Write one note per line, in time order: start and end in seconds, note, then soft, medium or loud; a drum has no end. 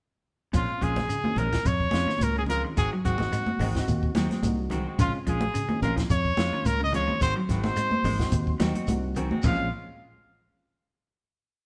0.53 0.65 A#1 medium
0.53 0.75 A#2 medium
0.53 0.92 G#3 medium
0.53 0.71 G#3 medium
0.53 0.92 C4 medium
0.53 0.92 C#4 medium
0.53 0.71 C#4 medium
0.53 0.93 F4 medium
0.53 0.72 F4 medium
0.53 0.84 F4 medium
0.53 kick medium
0.53 closed hi-hat medium
0.53 shekere medium
0.81 1.03 A#1 medium
0.81 0.99 G#3 medium
0.81 1.00 C#4 medium
0.81 1.00 F4 medium
0.81 1.40 G#4 medium
0.81 muted clean electric guitar stroke medium
0.81 kick medium
0.81 closed hi-hat soft
0.81 shekere soft
0.96 snare soft
0.96 high conga medium
0.96 low conga medium
1.08 1.21 C#3 medium
1.08 closed hi-hat medium
1.08 high conga soft
1.08 shekere medium
1.24 1.47 D#3 medium
1.24 1.62 G#3 medium
1.24 1.62 C4 medium
1.24 1.62 C#4 medium
1.24 1.62 F4 medium
1.24 high conga medium
1.36 1.58 A#1 medium
1.36 1.55 G#3 medium
1.36 1.56 C#4 medium
1.36 1.68 A#4 medium
1.36 muted clean electric guitar stroke medium
1.36 closed hi-hat soft
1.36 low conga medium
1.36 shekere soft
1.52 1.75 F3 medium
1.52 kick soft
1.52 snare medium
1.52 closed hi-hat soft
1.64 1.87 F2 medium
1.64 2.25 C#5 loud
1.64 kick medium
1.64 closed hi-hat medium
1.64 high conga soft
1.64 shekere medium
1.80 kick medium
1.91 2.05 F2 medium
1.91 2.11 G#3 soft
1.91 2.24 G#3 medium
1.91 2.24 C4 medium
1.91 2.11 C#4 soft
1.91 2.24 C#4 medium
1.91 2.11 F4 medium
1.91 2.24 F4 medium
1.91 snare medium
1.91 closed hi-hat soft
1.91 high conga medium
1.91 shekere soft
2.06 2.30 D#3 medium
2.06 snare soft
2.06 high conga medium
2.18 2.63 C#2 medium
2.18 closed hi-hat medium
2.18 high conga medium
2.18 shekere medium
2.23 2.37 A#4 medium
2.37 2.47 C#3 medium
2.37 2.44 G#4 medium
2.46 2.61 F3 medium
2.46 2.67 G#3 medium
2.46 2.78 G#3 medium
2.46 2.78 C4 medium
2.46 2.77 C#4 medium
2.46 2.78 F4 medium
2.46 2.62 A#4 medium
2.46 closed hi-hat medium
2.46 high conga soft
2.46 low conga medium
2.50 2.67 F4 medium
2.50 shekere soft
2.65 2.86 D#3 medium
2.77 2.88 G#1 medium
2.77 2.94 D#3 medium
2.77 2.95 G#3 medium
2.77 2.95 C4 medium
2.77 2.95 F#4 medium
2.77 2.90 G#4 medium
2.77 kick medium
2.77 closed hi-hat medium
2.77 shekere medium
2.93 3.14 F#3 medium
3.04 3.26 G#1 medium
3.04 3.22 D#3 medium
3.04 3.23 G#3 medium
3.04 3.23 C4 medium
3.04 4.12 F#4 medium
3.04 3.23 F#4 medium
3.04 kick medium
3.04 closed hi-hat soft
3.04 shekere soft
3.18 3.50 A#3 medium
3.18 3.50 C4 medium
3.18 3.50 D#4 medium
3.18 3.50 F#4 medium
3.18 snare soft
3.18 high conga medium
3.18 low conga medium
3.32 3.54 G#3 medium
3.32 closed hi-hat medium
3.32 high conga soft
3.32 shekere medium
3.46 high conga medium
3.59 3.81 G#1 medium
3.59 3.78 D#3 medium
3.59 3.83 G#3 medium
3.59 3.79 G#3 medium
3.59 3.79 C4 medium
3.59 muted clean electric guitar stroke medium
3.59 open hi-hat medium
3.59 low conga medium
3.59 shekere soft
3.75 4.13 A#3 medium
3.75 4.13 C4 medium
3.75 4.13 D#4 medium
3.75 4.13 F#4 medium
3.75 kick medium
3.75 snare medium
3.88 4.09 D#2 medium
3.88 kick medium
3.88 closed hi-hat medium
3.88 high conga soft
3.88 shekere medium
4.03 kick medium
4.15 4.27 D#2 medium
4.15 4.31 D#3 medium
4.15 4.38 F#3 medium
4.15 4.31 G#3 medium
4.15 4.31 C4 medium
4.15 4.30 F#4 medium
4.15 snare medium
4.15 closed hi-hat soft
4.15 high conga loud
4.15 shekere soft
4.30 4.48 G#3 soft
4.30 4.47 C4 soft
4.30 muted clean electric guitar stroke soft
4.30 snare soft
4.30 closed hi-hat soft
4.30 high conga medium
4.43 4.86 C2 medium
4.43 4.75 A#3 medium
4.43 4.75 C4 medium
4.43 4.75 D#4 medium
4.43 4.75 F#4 medium
4.43 closed hi-hat medium
4.43 high conga medium
4.43 shekere medium
4.70 4.93 D#3 medium
4.70 4.87 D#3 medium
4.70 4.87 G#3 medium
4.70 4.87 C4 medium
4.70 4.86 F#4 medium
4.70 closed hi-hat soft
4.70 high conga soft
4.70 low conga medium
4.70 shekere soft
4.87 4.99 G#3 soft
4.87 5.00 C4 soft
4.87 5.00 F#4 soft
4.98 5.10 A#1 medium
4.98 5.21 C#3 medium
4.98 5.38 G#3 medium
4.98 5.17 G#3 medium
4.98 5.38 C4 medium
4.98 5.38 C#4 medium
4.98 5.17 C#4 medium
4.98 5.38 F4 medium
4.98 5.13 F4 medium
4.98 5.18 F4 medium
4.98 kick loud
4.98 closed hi-hat medium
4.98 shekere medium
5.27 5.48 A#1 medium
5.27 5.49 F3 medium
5.27 5.45 G#3 medium
5.27 5.45 C#4 medium
5.27 5.46 F4 medium
5.27 5.80 G#4 medium
5.27 kick medium
5.27 closed hi-hat soft
5.27 shekere soft
5.41 high conga medium
5.54 5.66 C#3 medium
5.54 closed hi-hat medium
5.54 high conga soft
5.54 shekere medium
5.69 5.91 D#3 medium
5.69 6.07 G#3 medium
5.69 6.07 C4 medium
5.69 6.07 C#4 medium
5.69 6.07 F4 medium
5.69 high conga medium
5.82 6.04 A#1 medium
5.82 6.01 G#3 medium
5.82 6.01 C#4 medium
5.82 6.01 F4 medium
5.82 5.95 A#4 medium
5.82 closed hi-hat soft
5.82 low conga medium
5.82 shekere soft
5.96 6.19 F3 medium
5.96 kick medium
5.96 snare medium
5.96 closed hi-hat soft
6.10 6.32 F2 medium
6.10 6.68 C#5 medium
6.10 kick medium
6.10 closed hi-hat medium
6.10 high conga soft
6.10 shekere medium
6.25 kick medium
6.37 6.50 F2 medium
6.37 6.69 G#3 medium
6.37 6.54 G#3 medium
6.37 6.69 C4 medium
6.37 6.69 C#4 medium
6.37 6.54 C#4 medium
6.37 6.69 F4 medium
6.37 6.53 F4 medium
6.37 snare medium
6.37 closed hi-hat soft
6.37 high conga loud
6.37 shekere soft
6.52 6.75 D#3 medium
6.52 6.70 C#4 soft
6.52 6.70 F4 soft
6.52 high conga medium
6.65 7.08 C#2 medium
6.65 6.81 A#4 medium
6.65 closed hi-hat medium
6.65 high conga medium
6.65 shekere medium
6.80 6.91 C#3 medium
6.80 6.94 D#5 loud
6.92 7.05 F3 medium
6.92 7.22 G#3 medium
6.92 7.12 G#3 medium
6.92 7.22 C4 medium
6.92 7.22 C#4 medium
6.92 7.12 C#4 medium
6.92 7.22 F4 medium
6.92 7.12 F4 medium
6.92 7.20 C#5 medium
6.92 closed hi-hat medium
6.92 high conga soft
6.92 low conga medium
6.92 shekere soft
7.07 7.30 D#3 medium
7.07 high conga medium
7.21 7.33 G#1 medium
7.21 7.39 D#3 medium
7.21 7.40 C4 medium
7.21 7.40 F#4 medium
7.21 7.35 C5 loud
7.21 muted clean electric guitar stroke medium
7.21 kick medium
7.21 closed hi-hat medium
7.21 shekere medium
7.36 7.58 F#3 medium
7.49 7.70 G#1 medium
7.49 7.67 D#3 medium
7.49 7.68 G#3 medium
7.49 7.68 C4 medium
7.49 7.68 F#4 medium
7.49 8.57 C5 loud
7.49 kick medium
7.49 snare soft
7.49 closed hi-hat soft
7.49 shekere soft
7.64 7.95 A#3 medium
7.64 7.95 C4 medium
7.64 7.95 D#4 medium
7.64 7.95 F#4 medium
7.64 snare soft
7.64 high conga medium
7.76 7.99 G#3 medium
7.76 closed hi-hat medium
7.76 high conga soft
7.76 shekere medium
7.91 high conga medium
8.04 8.26 G#1 loud
8.04 8.23 D#3 medium
8.04 8.27 G#3 medium
8.04 8.23 G#3 medium
8.04 muted clean electric guitar stroke medium
8.04 open hi-hat medium
8.04 low conga medium
8.04 shekere soft
8.19 8.57 A#3 loud
8.19 8.57 C4 loud
8.19 8.57 D#4 medium
8.19 8.57 F#4 medium
8.19 kick medium
8.19 snare medium
8.32 8.54 D#2 medium
8.32 kick medium
8.32 closed hi-hat medium
8.32 high conga soft
8.32 shekere medium
8.47 kick medium
8.60 8.72 D#2 medium
8.60 8.76 D#3 medium
8.60 8.82 F#3 medium
8.60 8.75 C4 medium
8.60 8.74 F#4 medium
8.60 8.87 D#5 medium
8.60 snare medium
8.60 closed hi-hat soft
8.60 high conga loud
8.60 shekere soft
8.75 8.92 C4 soft
8.75 8.91 F#4 medium
8.75 muted clean electric guitar stroke soft
8.75 closed hi-hat soft
8.75 high conga medium
8.87 9.30 C2 medium
8.87 9.19 A#3 medium
8.87 9.19 C4 medium
8.87 9.19 D#4 medium
8.87 9.19 F#4 medium
8.87 9.15 F#5 medium
8.87 closed hi-hat medium
8.87 high conga medium
8.87 shekere medium
9.15 9.31 D#3 medium
9.15 9.38 D#3 medium
9.15 9.31 C4 medium
9.15 9.30 F#4 medium
9.15 9.43 G#5 medium
9.15 muted clean electric guitar stroke medium
9.15 closed hi-hat soft
9.15 high conga soft
9.15 low conga medium
9.15 shekere soft
9.31 9.42 G#3 soft
9.31 9.44 C4 soft
9.31 9.44 F#4 medium
9.31 high conga medium
9.43 9.70 A#1 medium
9.43 9.61 A#2 medium
9.43 9.66 G#3 medium
9.43 9.70 G#3 medium
9.43 9.70 C4 medium
9.43 9.70 C#4 medium
9.43 9.67 C#4 medium
9.43 9.70 F4 medium
9.43 9.68 F4 medium
9.43 9.71 F5 medium
9.43 kick medium
9.43 floor tom medium
9.43 china medium
9.43 low conga medium
9.43 shekere medium